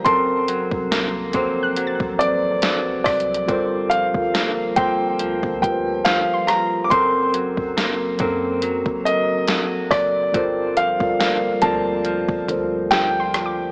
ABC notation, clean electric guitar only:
X:1
M:4/4
L:1/8
Q:"Swing 16ths" 1/4=70
K:Dphr
V:1 name="Clean electric guitar" clef=bass
[^F,,C] ^F, B, [F,B,C] F,2 F,2 | [G,,C] F, B, [F,B,C] F,2 F,2 | [^F,,C] ^F, B, [F,B,C] F,2 F,2 | [G,,C] F, B, [F,B,C] F,2 F,2 |]